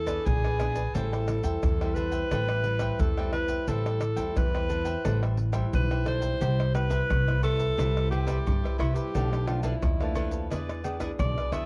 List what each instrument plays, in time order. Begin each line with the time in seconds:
Already playing: upright bass E2, nylon-string guitar E3, alto saxophone A4
0.06 nylon-string guitar B3 D4 G#4, cavaquinho G#4 B4 D5, pandeiro, tamborim, shaker, surdo
0.26 upright bass A#1, alto saxophone G#4, pandeiro, shaker, surdo
0.44 cavaquinho G#4 B4 D5, pandeiro, tamborim, shaker
0.59 nylon-string guitar B3 D4 G#4, cavaquinho E4 G#4 B4 D5, pandeiro, tamborim, shaker
0.75 cavaquinho G#4 B4 D5, pandeiro, shaker, surdo
0.94 upright bass A1, nylon-string guitar A2 G3 C4 E4, cavaquinho A4 C5 E5 G5, alto saxophone A4, pandeiro, shaker, surdo
1.12 cavaquinho C5 E5 G5, pandeiro, tamborim, shaker
1.28 nylon-string guitar G3 C4 E4, muted cavaquinho stroke, pandeiro, tamborim, shaker
1.44 upright bass E2, cavaquinho C5 E5 G5, pandeiro, shaker, surdo
1.63 upright bass E2, nylon-string guitar E3, pandeiro, tamborim, shaker, surdo
1.81 nylon-string guitar G3 C4 E4, cavaquinho C5 E5 G5, pandeiro, tamborim, shaker
1.94 cavaquinho A4 C5 E5 G5, alto saxophone B4, pandeiro, shaker, surdo
2.12 cavaquinho C5 E5 G5, pandeiro, shaker, surdo
2.31 upright bass A1, nylon-string guitar A2 G3 C4 E4, cavaquinho A4 C5 E5 G5, pandeiro, tamborim, shaker, surdo
2.48 cavaquinho C5 E5 G5, pandeiro, tamborim, shaker
2.64 nylon-string guitar G3 C4 E4, muted cavaquinho stroke, pandeiro
2.79 cavaquinho C5 E5 G5, pandeiro, tamborim, shaker, surdo
2.99 upright bass E2, nylon-string guitar E3, alto saxophone A4, pandeiro, shaker, surdo
3.17 nylon-string guitar G3 C4 E4, cavaquinho C5 E5 G5, pandeiro, tamborim, shaker
3.33 cavaquinho A4 C5 E5 G5, alto saxophone B4, pandeiro, tamborim
3.48 cavaquinho C5 E5 G5, pandeiro, shaker, surdo
3.68 upright bass A1, nylon-string guitar A2 G3 C4 E4, cavaquinho A4 C5 E5 G5, alto saxophone A4, pandeiro, shaker, surdo
3.86 cavaquinho C5 E5 G5, pandeiro, tamborim, shaker
4.00 muted cavaquinho stroke, pandeiro, tamborim, shaker
4.16 upright bass E2, nylon-string guitar G3 C4 E4, cavaquinho C5 E5 G5, pandeiro, shaker, surdo
4.36 upright bass E2, nylon-string guitar E3, alto saxophone B4, pandeiro, tamborim, shaker, surdo
4.54 cavaquinho C5 E5 G5, pandeiro, tamborim, shaker
4.69 nylon-string guitar G3 C4 E4, cavaquinho A4 C5 E5 G5, pandeiro, shaker
4.85 cavaquinho C5 E5 G5, pandeiro, shaker, surdo
5.05 upright bass A1, nylon-string guitar A2 G3 C4 E4, cavaquinho A4 C5 E5 G5, pandeiro, tamborim, shaker, surdo
5.22 cavaquinho C5 E5 G5, pandeiro, tamborim, shaker
5.37 muted cavaquinho stroke, pandeiro
5.52 nylon-string guitar G3 C4 E4, cavaquinho C5 E5 G5, pandeiro, tamborim, shaker, surdo
5.73 upright bass B1, nylon-string guitar E3, alto saxophone B4, pandeiro, shaker, surdo
5.91 cavaquinho C5 E5 G5, pandeiro, tamborim, shaker
6.05 nylon-string guitar G3 C4 E4, cavaquinho A4 C5 E5 G5, alto saxophone C5, pandeiro, tamborim
6.21 cavaquinho C5 E5 G5, pandeiro, shaker, surdo
6.41 upright bass C2, nylon-string guitar C3 G3 B3 E4, cavaquinho G4 C5 E5, pandeiro, low agogo, shaker, surdo
6.60 pandeiro, tamborim, shaker
6.74 nylon-string guitar G3 B3 E4, alto saxophone B4, pandeiro, tamborim, low agogo, shaker
6.90 cavaquinho G4 B4 C5 E5, pandeiro, shaker, surdo
7.09 upright bass C2, nylon-string guitar G2, pandeiro, tamborim, high agogo, shaker, surdo
7.27 nylon-string guitar G3 B3 E4, cavaquinho B4 C5 E5, pandeiro, tamborim, shaker
7.42 cavaquinho G4 B4 C5 E5, alto saxophone A4, pandeiro, high agogo, shaker
7.58 cavaquinho B4 C5 E5, pandeiro, shaker, surdo
7.77 upright bass C2, nylon-string guitar C3 G3 E4, cavaquinho G4 B4 C5 E5, pandeiro, tamborim, shaker, surdo
7.97 pandeiro, tamborim, shaker
8.10 cavaquinho G4 B4 C5 E5, alto saxophone G4, pandeiro, low agogo
8.27 nylon-string guitar G3 B3 E4, cavaquinho G4 B4 C5 E5, pandeiro, tamborim, shaker, surdo
8.47 upright bass G2, nylon-string guitar G2, pandeiro, high agogo, shaker, surdo
8.63 cavaquinho B4 C5 E5, pandeiro, tamborim, shaker
8.78 upright bass C2, nylon-string guitar G3 B3 E4, alto saxophone E4, cavaquinho G4 B4 C5 E5, pandeiro, tamborim, high agogo
8.95 alto saxophone G4, cavaquinho B4 C5 E5, pandeiro, shaker, surdo
9.14 upright bass B1, nylon-string guitar B2 F3 A3 D4, cavaquinho D4 A4 B4 F5, pandeiro, low agogo, shaker, surdo
9.33 pandeiro, tamborim, shaker
9.47 nylon-string guitar F3 A3 D4, alto saxophone F4, pandeiro, tamborim, low agogo
9.63 cavaquinho D4 A4 B4 F5, alto saxophone E4, pandeiro, shaker, surdo
9.82 upright bass D#2, nylon-string guitar B2, pandeiro, tamborim, high agogo, shaker, surdo
10.00 nylon-string guitar F3 A3 D4, cavaquinho A4 B4 F5, pandeiro, tamborim, shaker
10.15 cavaquinho D4 A4 B4 F5, pandeiro, high agogo, shaker, surdo
10.31 cavaquinho A4 B4 F5, pandeiro, shaker, surdo
10.50 upright bass E2, nylon-string guitar E3 B3 D4 G#4, cavaquinho E4 G#4 B4 D5, pandeiro, tamborim, shaker, surdo
10.69 pandeiro, tamborim, shaker
10.84 nylon-string guitar B3 D4 G#4, cavaquinho E4 G#4 B4 D5, pandeiro, low agogo, shaker
11.00 nylon-string guitar B3 D4 G#4, cavaquinho E4 G#4 B4 D5, pandeiro, tamborim, shaker, surdo
11.19 upright bass B1, nylon-string guitar B2, alto saxophone D5, pandeiro, high agogo, shaker, surdo
11.38 cavaquinho G#4 B4 D5, pandeiro, tamborim, shaker
11.52 upright bass E2, nylon-string guitar B3 D4 G#4, cavaquinho E4 G#4 B4 D5, alto saxophone E5, pandeiro, tamborim, high agogo, shaker